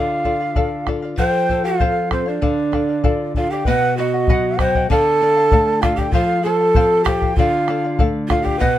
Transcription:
Already playing: D3 F4 A4 D5 F5
0.24 F4 A4 D5 F5, bombo low
0.40 D5 F5
0.56 A4 D5 F5, bombo low
0.87 F4 A4 D5 F5, bombo rim, bombo low
1.02 D5 F5
1.18 F3 A4 C5 F5 G5, bombo low
1.49 A4 C5 F5, bombo low
1.64 F4 C5 F5
1.80 C4 A4 C5 F5, bombo low
2.11 C4 A4 C5 F5, bombo rim, bombo low
2.26 D4 C5 D5 F5
2.42 D3 A4 D5 F5, bombo low
2.72 D4 A4 D5 F5, bombo rim, bombo low
2.89 D5 F5
3.04 F4 A4 D5 F5, bombo low
3.34 D4 F4 A4 D5 F5, bombo low
3.50 G4 D5 F5 G5
3.65 B2 B4 D#5 F#5, bombo low
3.97 F#4 B4 D#5 F#5
4.14 D#5 F#5
4.28 F#3 B4 D#5 F#5, bombo low
4.59 F#3 B4 C5 D#5 F#5 G5, bombo rim, bombo low
4.75 D#5 F#5, bombo low
4.90 D3 A4 D5 F5 A5, bombo low
5.22 A4 D5 F5
5.36 D5 F5
5.52 A3 A4 D5 F5, bombo low
5.82 F4 A4 D5 F5, bombo rim, bombo low
5.96 G4 F5 G5, bombo low
6.01 D5
6.11 F3 F4 A4 C5 F5, bombo low
6.42 A4 C5 F5 A5
6.61 C5 F5
6.75 C4 A4 C5 F5, bombo low
7.04 G4 A4 C5 F5 G5, bombo rim, bombo low
7.22 C5 F5, bombo low
7.35 D3 F4 A4 D5 F5, bombo low
7.68 F4 A4 D5 F5, bombo rim
7.84 D5 F5
7.99 A3 A4 D5 F5, bombo low
8.28 F4 A4 D5 F5, bombo rim, bombo low
8.42 G4 D5 F5 G5, bombo low
8.59 B2 B4 D#5 F#5, bombo low

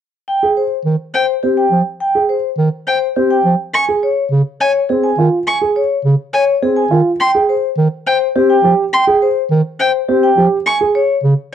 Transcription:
0.28 G5
0.42 G#4
0.57 C5
0.85 D#3
1.14 C5 G5
1.43 C4 G4
1.57 G5
1.72 F3
2.01 G5
2.15 G#4
2.29 C5
2.58 D#3
2.87 C5 G5
3.16 C4 G4
3.31 G5
3.45 F3
3.74 G#5 C#6
3.89 G#4
4.03 C#5
4.31 C#3
4.61 C#5 G#5
4.89 C4 G#4
5.03 G#5
5.18 D#3 F4
5.47 G#5 C#6
5.61 G#4
5.76 C#5
6.05 C#3
6.33 C#5 G#5
6.62 C4 G#4
6.76 G#5
6.91 D#3 F4
7.20 G5 C6
7.34 G#4
7.49 C5
7.77 D#3
8.06 C5 G5
8.35 C4 G4
8.50 G5
8.64 F3 G4
8.93 G5 C6
9.07 G#4
9.22 C5
9.51 D#3
9.80 C5 G5
10.08 C4 G4
10.23 G5
10.37 F3 G4
10.66 G#5 C#6
10.81 G#4
10.95 C#5
11.23 C#3

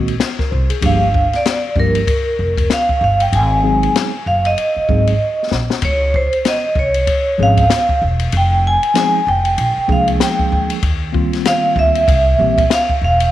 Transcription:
Already playing: A#1 D#3 G#3 A#3 C4 F#4
0.08 ride
0.20 snare, hi-hat pedal, ride
0.39 A#4, kick, snare
0.51 C2 C5
0.70 G#4, ride
0.81 G1 F3 G3 A#3 D4 G4, kick, ride
0.86 F5
1.14 kick
1.33 D5, snare, ride
1.45 snare, hi-hat pedal, ride
1.76 G1 F3 G3 A#3 D4 G4 A#4, kick
1.95 ride
2.07 kick, ride
2.39 F1
2.57 kick, ride
2.70 F5, snare, hi-hat pedal, ride
2.89 kick
3.01 G1 F5
3.20 G5, ride
3.32 G#1 G#5, ride
3.62 F#3 G#3 C4 D#4 G#4
3.83 ride
3.95 snare, hi-hat pedal, ride
4.26 F#1 F5
4.45 D#5, ride
4.58 ride
4.76 muted upright bass stroke
4.88 G#1 F#3 G#3 C4 D#4 G#4, kick
5.07 ride
5.51 A#1, snare
5.70 snare
5.82 C#2 C#5, kick, ride
6.14 C5, kick
6.33 ride
6.45 D#5, snare, hi-hat pedal, ride
6.75 C2 C#5, kick
6.94 ride
7.07 kick, ride
7.38 G#1 F3 G#3 C4 C#4 G#4
7.43 F5
7.57 kick, ride
7.70 snare, hi-hat pedal, ride
7.89 kick
8.02 E1
8.19 ride
8.32 F1, ride
8.37 G5
8.67 G#5
8.83 ride
8.94 F3 G#3 C4 D#4 G#4, snare, hi-hat pedal, ride
8.98 G#5
9.27 F1 G5
9.45 ride
9.58 A#1, ride
9.77 muted upright bass stroke
9.88 C2 F3 G#3 A#3 D4 G#4, kick
9.92 F5
10.08 ride
10.20 G5, snare, hi-hat pedal, ride
10.39 kick
10.52 D2
10.70 ride
10.82 D#2, kick, ride
11.12 D#3 G3 A#3 C4 F4, kick
11.33 snare, ride
11.45 F5, snare, hi-hat pedal, ride
11.76 D2 E5, kick
11.95 ride
12.08 C2, kick, ride
12.38 A#1 E3 G3 A#3 C4 G4
12.58 kick, ride
12.70 F5, snare, hi-hat pedal, ride
12.89 kick
13.01 E1 F5
13.20 ride

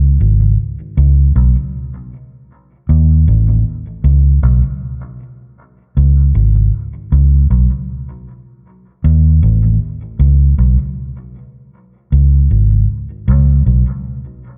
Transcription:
Already playing: C#2
0.21 G#1
0.97 C#2
1.36 B1
2.89 D#2
3.28 A1
4.04 C#2
4.43 B1
5.97 C#2
6.35 G#1
7.12 C#2
7.50 B1
9.04 D#2
9.43 A1
10.19 C#2
10.58 B1
12.12 C#2
12.51 G#1
13.28 C#2
13.66 B1

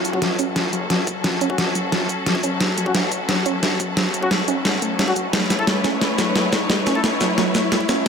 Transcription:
Already playing: F#1 F#3 C#4 F#4 A4, riser
0.05 closed hi-hat, shaker
0.13 F#3 C#4 F#4, kick
0.22 A1 F#3, snare, closed hi-hat
0.39 C#4, kick, closed hi-hat, shaker
0.56 snare, closed hi-hat
0.73 F#1 F#3, closed hi-hat, shaker
0.90 F#3, snare, closed hi-hat
1.07 kick, closed hi-hat, shaker
1.24 F#1 F#3, kick, snare, closed hi-hat
1.41 C#4, closed hi-hat, shaker
1.50 F#3 C#4 F#4, kick
1.58 snare, closed hi-hat
1.75 F#3, closed hi-hat, shaker
1.92 F#3, snare, closed hi-hat
2.09 closed hi-hat, shaker
2.26 F#3, snare, closed hi-hat
2.35 kick
2.43 F#1 C#4, closed hi-hat, shaker
2.60 F#1, kick, snare, closed hi-hat
2.78 F#3, closed hi-hat, shaker
2.86 F#3 C#4 F#4, kick
2.95 A1 F#3, snare, closed hi-hat
3.12 kick, closed hi-hat, shaker
3.29 F#3, snare, closed hi-hat
3.46 F#1 C#4, closed hi-hat, shaker
3.63 snare, closed hi-hat
3.80 F#3, kick, closed hi-hat, shaker
3.97 F#1 F#3, kick, snare, closed hi-hat
4.14 closed hi-hat, shaker
4.23 F#3 C#4 F#4, kick
4.31 F#3, snare, closed hi-hat
4.48 F#1 C#4, closed hi-hat, shaker
4.65 snare, closed hi-hat
4.82 A3, closed hi-hat, shaker
4.99 C#4, snare, closed hi-hat
5.08 F#3 C#4 F#4, kick
5.16 F#3, closed hi-hat, shaker
5.33 A1 F#3 A3 E4 B4 C#5, kick, snare, closed hi-hat
5.50 snare, closed hi-hat, shaker
5.59 A3 E4 A4, kick
5.67 C#2 G3, snare, closed hi-hat
5.84 C#4, kick, snare, closed hi-hat, shaker
6.01 snare, closed hi-hat
6.18 A1 F#3, snare, closed hi-hat, shaker
6.36 F#3, snare, closed hi-hat
6.53 kick, snare, closed hi-hat, shaker
6.70 A1 G3, kick, snare, closed hi-hat
6.87 C#4, snare, closed hi-hat, shaker
6.95 A3 E4 A4, kick
7.04 snare, closed hi-hat
7.21 F#3, snare, closed hi-hat, shaker
7.38 F#3, snare, closed hi-hat
7.55 snare, closed hi-hat, shaker
7.72 G3, snare, closed hi-hat
7.80 kick
7.89 A1 C#4, snare, closed hi-hat, shaker

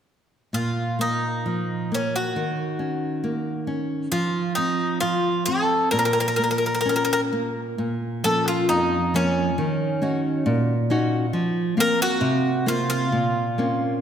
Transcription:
0.53 A#2 F4
0.99 A#3 D#4
1.46 F3
1.92 A#3 C#4
2.16 F#4
2.36 D#3
2.79 C#4
3.24 A#3
3.67 C#4
4.12 F3 F4
4.55 C4 D#4
5.00 F3 F4
5.46 C4 A4
5.91 A#2 A#4
5.99 A#4
6.05 A#4
6.13 A#4
6.20 A#4
6.28 A#4
6.36 A#3 A#4
6.44 A#4
6.51 A#4
6.58 A#4
6.66 A#4
6.75 A#4
6.81 A#4
6.85 C#4 A#4
6.96 A#4
7.05 A#4
7.13 A#4
7.33 A#3
7.78 A#2
8.24 F3 A#3 C#4 A4
8.48 F4
8.69 F2 D#4
9.14 F3 A#3 C#4
9.58 D#3
10.02 C#4 D#4 F#4
10.46 A#2
10.90 C#4 D#4 F#4
11.33 F3
11.77 A#3 C4 A#4 F5
12.02 F#4
12.21 C3
12.66 A#3 C4 F4
12.90 F4
13.12 A#2
13.58 A#3 C4 C#4

